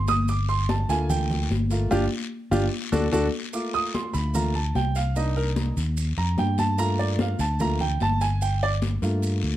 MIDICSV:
0, 0, Header, 1, 4, 480
1, 0, Start_track
1, 0, Key_signature, -2, "minor"
1, 0, Tempo, 406504
1, 339, Time_signature, 4, 2, 24, 8
1, 11297, End_track
2, 0, Start_track
2, 0, Title_t, "Grand piano"
2, 0, Program_c, 0, 0
2, 100, Note_on_c, 0, 87, 121
2, 332, Note_off_c, 0, 87, 0
2, 343, Note_on_c, 0, 86, 93
2, 574, Note_off_c, 0, 86, 0
2, 577, Note_on_c, 0, 84, 102
2, 810, Note_off_c, 0, 84, 0
2, 817, Note_on_c, 0, 81, 77
2, 1050, Note_off_c, 0, 81, 0
2, 1050, Note_on_c, 0, 57, 54
2, 1055, Note_on_c, 0, 58, 51
2, 1059, Note_on_c, 0, 80, 94
2, 1066, Note_on_c, 0, 65, 62
2, 1291, Note_off_c, 0, 80, 0
2, 1296, Note_on_c, 0, 79, 88
2, 1737, Note_off_c, 0, 57, 0
2, 1740, Note_off_c, 0, 58, 0
2, 1743, Note_off_c, 0, 79, 0
2, 1745, Note_off_c, 0, 65, 0
2, 2014, Note_on_c, 0, 57, 49
2, 2021, Note_on_c, 0, 58, 45
2, 2025, Note_on_c, 0, 65, 59
2, 2231, Note_off_c, 0, 57, 0
2, 2235, Note_off_c, 0, 58, 0
2, 2236, Note_off_c, 0, 65, 0
2, 2253, Note_on_c, 0, 65, 101
2, 2254, Note_on_c, 0, 62, 98
2, 2254, Note_on_c, 0, 67, 101
2, 2408, Note_off_c, 0, 65, 0
2, 2409, Note_off_c, 0, 62, 0
2, 2409, Note_off_c, 0, 67, 0
2, 2968, Note_on_c, 0, 62, 91
2, 2968, Note_on_c, 0, 65, 99
2, 2969, Note_on_c, 0, 67, 91
2, 3125, Note_off_c, 0, 62, 0
2, 3125, Note_off_c, 0, 65, 0
2, 3125, Note_off_c, 0, 67, 0
2, 3450, Note_on_c, 0, 66, 98
2, 3450, Note_on_c, 0, 69, 104
2, 3452, Note_on_c, 0, 62, 100
2, 3606, Note_off_c, 0, 66, 0
2, 3606, Note_off_c, 0, 69, 0
2, 3607, Note_off_c, 0, 62, 0
2, 3686, Note_on_c, 0, 69, 104
2, 3689, Note_on_c, 0, 66, 106
2, 3691, Note_on_c, 0, 62, 103
2, 3844, Note_off_c, 0, 69, 0
2, 3846, Note_off_c, 0, 66, 0
2, 3847, Note_off_c, 0, 62, 0
2, 4170, Note_on_c, 0, 57, 52
2, 4172, Note_on_c, 0, 58, 51
2, 4178, Note_on_c, 0, 86, 77
2, 4184, Note_on_c, 0, 65, 60
2, 4410, Note_off_c, 0, 86, 0
2, 4416, Note_on_c, 0, 87, 122
2, 4649, Note_off_c, 0, 87, 0
2, 4656, Note_on_c, 0, 84, 79
2, 4884, Note_on_c, 0, 83, 92
2, 4889, Note_off_c, 0, 84, 0
2, 5108, Note_off_c, 0, 57, 0
2, 5112, Note_off_c, 0, 58, 0
2, 5118, Note_off_c, 0, 65, 0
2, 5123, Note_off_c, 0, 83, 0
2, 5125, Note_on_c, 0, 57, 56
2, 5130, Note_on_c, 0, 58, 50
2, 5136, Note_on_c, 0, 65, 61
2, 5138, Note_on_c, 0, 82, 88
2, 5346, Note_off_c, 0, 57, 0
2, 5349, Note_off_c, 0, 58, 0
2, 5352, Note_off_c, 0, 65, 0
2, 5370, Note_off_c, 0, 82, 0
2, 5371, Note_on_c, 0, 81, 84
2, 5607, Note_off_c, 0, 81, 0
2, 5619, Note_on_c, 0, 79, 96
2, 5851, Note_off_c, 0, 79, 0
2, 5854, Note_on_c, 0, 77, 91
2, 6088, Note_off_c, 0, 77, 0
2, 6089, Note_on_c, 0, 58, 52
2, 6096, Note_on_c, 0, 62, 50
2, 6101, Note_on_c, 0, 75, 77
2, 6104, Note_on_c, 0, 63, 63
2, 6332, Note_off_c, 0, 75, 0
2, 6336, Note_on_c, 0, 70, 93
2, 6481, Note_off_c, 0, 70, 0
2, 6777, Note_off_c, 0, 58, 0
2, 6781, Note_off_c, 0, 62, 0
2, 6785, Note_off_c, 0, 63, 0
2, 7294, Note_on_c, 0, 82, 89
2, 7529, Note_off_c, 0, 82, 0
2, 7543, Note_on_c, 0, 79, 93
2, 7774, Note_off_c, 0, 79, 0
2, 7777, Note_on_c, 0, 81, 97
2, 8006, Note_on_c, 0, 57, 56
2, 8011, Note_off_c, 0, 81, 0
2, 8011, Note_on_c, 0, 58, 57
2, 8015, Note_on_c, 0, 82, 109
2, 8020, Note_on_c, 0, 65, 61
2, 8250, Note_off_c, 0, 82, 0
2, 8257, Note_on_c, 0, 74, 83
2, 8491, Note_off_c, 0, 74, 0
2, 8506, Note_on_c, 0, 77, 82
2, 8696, Note_off_c, 0, 57, 0
2, 8699, Note_off_c, 0, 58, 0
2, 8704, Note_off_c, 0, 65, 0
2, 8736, Note_off_c, 0, 77, 0
2, 8738, Note_on_c, 0, 81, 89
2, 8972, Note_off_c, 0, 81, 0
2, 8976, Note_on_c, 0, 57, 54
2, 8982, Note_on_c, 0, 58, 51
2, 8985, Note_on_c, 0, 82, 103
2, 8988, Note_on_c, 0, 65, 56
2, 9194, Note_off_c, 0, 57, 0
2, 9197, Note_off_c, 0, 58, 0
2, 9200, Note_off_c, 0, 65, 0
2, 9215, Note_off_c, 0, 82, 0
2, 9220, Note_on_c, 0, 79, 94
2, 9453, Note_off_c, 0, 79, 0
2, 9469, Note_on_c, 0, 81, 108
2, 9698, Note_off_c, 0, 81, 0
2, 9699, Note_on_c, 0, 80, 99
2, 9932, Note_off_c, 0, 80, 0
2, 9943, Note_on_c, 0, 79, 89
2, 10174, Note_off_c, 0, 79, 0
2, 10189, Note_on_c, 0, 74, 107
2, 10331, Note_off_c, 0, 74, 0
2, 10650, Note_on_c, 0, 57, 55
2, 10652, Note_on_c, 0, 58, 46
2, 10661, Note_on_c, 0, 65, 57
2, 11297, Note_off_c, 0, 57, 0
2, 11297, Note_off_c, 0, 58, 0
2, 11297, Note_off_c, 0, 65, 0
2, 11297, End_track
3, 0, Start_track
3, 0, Title_t, "Fingered electric bass"
3, 0, Program_c, 1, 33
3, 0, Note_on_c, 1, 31, 97
3, 985, Note_off_c, 1, 31, 0
3, 1053, Note_on_c, 1, 38, 93
3, 1728, Note_off_c, 1, 38, 0
3, 1771, Note_on_c, 1, 31, 93
3, 2220, Note_off_c, 1, 31, 0
3, 2254, Note_on_c, 1, 31, 95
3, 2434, Note_off_c, 1, 31, 0
3, 2972, Note_on_c, 1, 31, 107
3, 3153, Note_off_c, 1, 31, 0
3, 3453, Note_on_c, 1, 38, 105
3, 3633, Note_off_c, 1, 38, 0
3, 3690, Note_on_c, 1, 38, 100
3, 3871, Note_off_c, 1, 38, 0
3, 4894, Note_on_c, 1, 38, 94
3, 5568, Note_off_c, 1, 38, 0
3, 5612, Note_on_c, 1, 36, 100
3, 6744, Note_off_c, 1, 36, 0
3, 6811, Note_on_c, 1, 39, 98
3, 7261, Note_off_c, 1, 39, 0
3, 7290, Note_on_c, 1, 41, 72
3, 7517, Note_off_c, 1, 41, 0
3, 7527, Note_on_c, 1, 43, 94
3, 8663, Note_off_c, 1, 43, 0
3, 8728, Note_on_c, 1, 38, 99
3, 9407, Note_off_c, 1, 38, 0
3, 9454, Note_on_c, 1, 31, 87
3, 10587, Note_off_c, 1, 31, 0
3, 10652, Note_on_c, 1, 43, 99
3, 11103, Note_off_c, 1, 43, 0
3, 11137, Note_on_c, 1, 38, 76
3, 11297, Note_off_c, 1, 38, 0
3, 11297, End_track
4, 0, Start_track
4, 0, Title_t, "Drums"
4, 90, Note_on_c, 9, 70, 72
4, 91, Note_on_c, 9, 73, 71
4, 102, Note_on_c, 9, 63, 81
4, 208, Note_off_c, 9, 70, 0
4, 209, Note_off_c, 9, 73, 0
4, 220, Note_off_c, 9, 63, 0
4, 333, Note_on_c, 9, 70, 82
4, 339, Note_on_c, 9, 74, 73
4, 451, Note_off_c, 9, 70, 0
4, 457, Note_off_c, 9, 74, 0
4, 576, Note_on_c, 9, 63, 33
4, 578, Note_on_c, 9, 70, 34
4, 694, Note_off_c, 9, 63, 0
4, 696, Note_off_c, 9, 70, 0
4, 813, Note_on_c, 9, 73, 78
4, 816, Note_on_c, 9, 63, 98
4, 818, Note_on_c, 9, 70, 33
4, 931, Note_off_c, 9, 73, 0
4, 934, Note_off_c, 9, 63, 0
4, 936, Note_off_c, 9, 70, 0
4, 1054, Note_on_c, 9, 73, 75
4, 1057, Note_on_c, 9, 70, 73
4, 1172, Note_off_c, 9, 73, 0
4, 1175, Note_off_c, 9, 70, 0
4, 1295, Note_on_c, 9, 63, 36
4, 1295, Note_on_c, 9, 64, 89
4, 1295, Note_on_c, 9, 74, 71
4, 1298, Note_on_c, 9, 70, 88
4, 1413, Note_off_c, 9, 63, 0
4, 1413, Note_off_c, 9, 64, 0
4, 1413, Note_off_c, 9, 74, 0
4, 1416, Note_off_c, 9, 70, 0
4, 1540, Note_on_c, 9, 70, 31
4, 1542, Note_on_c, 9, 63, 35
4, 1542, Note_on_c, 9, 64, 78
4, 1658, Note_off_c, 9, 70, 0
4, 1660, Note_off_c, 9, 63, 0
4, 1660, Note_off_c, 9, 64, 0
4, 1772, Note_on_c, 9, 73, 70
4, 1780, Note_on_c, 9, 70, 29
4, 1785, Note_on_c, 9, 63, 81
4, 1891, Note_off_c, 9, 73, 0
4, 1898, Note_off_c, 9, 70, 0
4, 1903, Note_off_c, 9, 63, 0
4, 2014, Note_on_c, 9, 73, 66
4, 2016, Note_on_c, 9, 70, 71
4, 2027, Note_on_c, 9, 63, 37
4, 2132, Note_off_c, 9, 73, 0
4, 2134, Note_off_c, 9, 70, 0
4, 2145, Note_off_c, 9, 63, 0
4, 2253, Note_on_c, 9, 74, 108
4, 2259, Note_on_c, 9, 70, 103
4, 2263, Note_on_c, 9, 63, 100
4, 2371, Note_off_c, 9, 74, 0
4, 2378, Note_off_c, 9, 70, 0
4, 2381, Note_off_c, 9, 63, 0
4, 2972, Note_on_c, 9, 74, 109
4, 2974, Note_on_c, 9, 63, 104
4, 2980, Note_on_c, 9, 70, 100
4, 3090, Note_off_c, 9, 74, 0
4, 3092, Note_off_c, 9, 63, 0
4, 3098, Note_off_c, 9, 70, 0
4, 3455, Note_on_c, 9, 63, 111
4, 3459, Note_on_c, 9, 70, 93
4, 3573, Note_off_c, 9, 63, 0
4, 3577, Note_off_c, 9, 70, 0
4, 3690, Note_on_c, 9, 74, 94
4, 3698, Note_on_c, 9, 70, 100
4, 3699, Note_on_c, 9, 63, 105
4, 3808, Note_off_c, 9, 74, 0
4, 3816, Note_off_c, 9, 70, 0
4, 3817, Note_off_c, 9, 63, 0
4, 4170, Note_on_c, 9, 70, 90
4, 4171, Note_on_c, 9, 74, 73
4, 4174, Note_on_c, 9, 63, 36
4, 4288, Note_off_c, 9, 70, 0
4, 4289, Note_off_c, 9, 74, 0
4, 4292, Note_off_c, 9, 63, 0
4, 4415, Note_on_c, 9, 70, 31
4, 4420, Note_on_c, 9, 63, 32
4, 4533, Note_off_c, 9, 70, 0
4, 4538, Note_off_c, 9, 63, 0
4, 4650, Note_on_c, 9, 73, 77
4, 4656, Note_on_c, 9, 70, 32
4, 4661, Note_on_c, 9, 63, 99
4, 4768, Note_off_c, 9, 73, 0
4, 4774, Note_off_c, 9, 70, 0
4, 4779, Note_off_c, 9, 63, 0
4, 4891, Note_on_c, 9, 70, 76
4, 4896, Note_on_c, 9, 73, 80
4, 5009, Note_off_c, 9, 70, 0
4, 5014, Note_off_c, 9, 73, 0
4, 5128, Note_on_c, 9, 70, 98
4, 5134, Note_on_c, 9, 74, 69
4, 5139, Note_on_c, 9, 63, 36
4, 5139, Note_on_c, 9, 64, 80
4, 5247, Note_off_c, 9, 70, 0
4, 5252, Note_off_c, 9, 74, 0
4, 5257, Note_off_c, 9, 63, 0
4, 5257, Note_off_c, 9, 64, 0
4, 5372, Note_on_c, 9, 70, 31
4, 5375, Note_on_c, 9, 63, 36
4, 5490, Note_off_c, 9, 70, 0
4, 5493, Note_off_c, 9, 63, 0
4, 5613, Note_on_c, 9, 63, 86
4, 5615, Note_on_c, 9, 70, 29
4, 5615, Note_on_c, 9, 73, 67
4, 5731, Note_off_c, 9, 63, 0
4, 5733, Note_off_c, 9, 70, 0
4, 5733, Note_off_c, 9, 73, 0
4, 5849, Note_on_c, 9, 70, 75
4, 5854, Note_on_c, 9, 63, 36
4, 5857, Note_on_c, 9, 73, 74
4, 5967, Note_off_c, 9, 70, 0
4, 5972, Note_off_c, 9, 63, 0
4, 5975, Note_off_c, 9, 73, 0
4, 6092, Note_on_c, 9, 70, 83
4, 6095, Note_on_c, 9, 63, 32
4, 6096, Note_on_c, 9, 74, 78
4, 6210, Note_off_c, 9, 70, 0
4, 6213, Note_off_c, 9, 63, 0
4, 6214, Note_off_c, 9, 74, 0
4, 6331, Note_on_c, 9, 63, 35
4, 6337, Note_on_c, 9, 70, 34
4, 6449, Note_off_c, 9, 63, 0
4, 6455, Note_off_c, 9, 70, 0
4, 6569, Note_on_c, 9, 63, 99
4, 6573, Note_on_c, 9, 70, 31
4, 6574, Note_on_c, 9, 73, 77
4, 6687, Note_off_c, 9, 63, 0
4, 6691, Note_off_c, 9, 70, 0
4, 6692, Note_off_c, 9, 73, 0
4, 6814, Note_on_c, 9, 70, 76
4, 6814, Note_on_c, 9, 73, 73
4, 6932, Note_off_c, 9, 70, 0
4, 6932, Note_off_c, 9, 73, 0
4, 7050, Note_on_c, 9, 70, 93
4, 7054, Note_on_c, 9, 74, 73
4, 7056, Note_on_c, 9, 63, 37
4, 7168, Note_off_c, 9, 70, 0
4, 7172, Note_off_c, 9, 74, 0
4, 7174, Note_off_c, 9, 63, 0
4, 7289, Note_on_c, 9, 70, 29
4, 7292, Note_on_c, 9, 63, 34
4, 7407, Note_off_c, 9, 70, 0
4, 7410, Note_off_c, 9, 63, 0
4, 7530, Note_on_c, 9, 63, 92
4, 7530, Note_on_c, 9, 73, 66
4, 7534, Note_on_c, 9, 70, 28
4, 7648, Note_off_c, 9, 63, 0
4, 7648, Note_off_c, 9, 73, 0
4, 7652, Note_off_c, 9, 70, 0
4, 7769, Note_on_c, 9, 73, 75
4, 7772, Note_on_c, 9, 70, 76
4, 7775, Note_on_c, 9, 63, 83
4, 7887, Note_off_c, 9, 73, 0
4, 7890, Note_off_c, 9, 70, 0
4, 7893, Note_off_c, 9, 63, 0
4, 8009, Note_on_c, 9, 74, 73
4, 8012, Note_on_c, 9, 63, 35
4, 8013, Note_on_c, 9, 70, 97
4, 8127, Note_off_c, 9, 74, 0
4, 8130, Note_off_c, 9, 63, 0
4, 8131, Note_off_c, 9, 70, 0
4, 8251, Note_on_c, 9, 63, 36
4, 8255, Note_on_c, 9, 70, 32
4, 8369, Note_off_c, 9, 63, 0
4, 8373, Note_off_c, 9, 70, 0
4, 8489, Note_on_c, 9, 63, 106
4, 8491, Note_on_c, 9, 73, 78
4, 8494, Note_on_c, 9, 70, 33
4, 8607, Note_off_c, 9, 63, 0
4, 8610, Note_off_c, 9, 73, 0
4, 8613, Note_off_c, 9, 70, 0
4, 8729, Note_on_c, 9, 70, 76
4, 8731, Note_on_c, 9, 73, 76
4, 8847, Note_off_c, 9, 70, 0
4, 8849, Note_off_c, 9, 73, 0
4, 8969, Note_on_c, 9, 70, 89
4, 8973, Note_on_c, 9, 74, 69
4, 8977, Note_on_c, 9, 63, 36
4, 8977, Note_on_c, 9, 64, 86
4, 9087, Note_off_c, 9, 70, 0
4, 9091, Note_off_c, 9, 74, 0
4, 9095, Note_off_c, 9, 63, 0
4, 9095, Note_off_c, 9, 64, 0
4, 9211, Note_on_c, 9, 70, 32
4, 9216, Note_on_c, 9, 63, 38
4, 9216, Note_on_c, 9, 64, 75
4, 9330, Note_off_c, 9, 70, 0
4, 9334, Note_off_c, 9, 63, 0
4, 9334, Note_off_c, 9, 64, 0
4, 9451, Note_on_c, 9, 73, 71
4, 9455, Note_on_c, 9, 70, 31
4, 9460, Note_on_c, 9, 63, 88
4, 9570, Note_off_c, 9, 73, 0
4, 9573, Note_off_c, 9, 70, 0
4, 9578, Note_off_c, 9, 63, 0
4, 9694, Note_on_c, 9, 70, 77
4, 9695, Note_on_c, 9, 73, 75
4, 9701, Note_on_c, 9, 63, 36
4, 9812, Note_off_c, 9, 70, 0
4, 9813, Note_off_c, 9, 73, 0
4, 9819, Note_off_c, 9, 63, 0
4, 9932, Note_on_c, 9, 74, 73
4, 9938, Note_on_c, 9, 63, 35
4, 9939, Note_on_c, 9, 70, 93
4, 10050, Note_off_c, 9, 74, 0
4, 10056, Note_off_c, 9, 63, 0
4, 10057, Note_off_c, 9, 70, 0
4, 10181, Note_on_c, 9, 70, 34
4, 10183, Note_on_c, 9, 63, 36
4, 10299, Note_off_c, 9, 70, 0
4, 10301, Note_off_c, 9, 63, 0
4, 10413, Note_on_c, 9, 73, 78
4, 10417, Note_on_c, 9, 63, 94
4, 10420, Note_on_c, 9, 70, 29
4, 10531, Note_off_c, 9, 73, 0
4, 10535, Note_off_c, 9, 63, 0
4, 10538, Note_off_c, 9, 70, 0
4, 10653, Note_on_c, 9, 73, 76
4, 10662, Note_on_c, 9, 70, 72
4, 10771, Note_off_c, 9, 73, 0
4, 10780, Note_off_c, 9, 70, 0
4, 10890, Note_on_c, 9, 74, 75
4, 10898, Note_on_c, 9, 63, 37
4, 10898, Note_on_c, 9, 70, 95
4, 11008, Note_off_c, 9, 74, 0
4, 11016, Note_off_c, 9, 63, 0
4, 11016, Note_off_c, 9, 70, 0
4, 11133, Note_on_c, 9, 63, 36
4, 11140, Note_on_c, 9, 70, 29
4, 11251, Note_off_c, 9, 63, 0
4, 11258, Note_off_c, 9, 70, 0
4, 11297, End_track
0, 0, End_of_file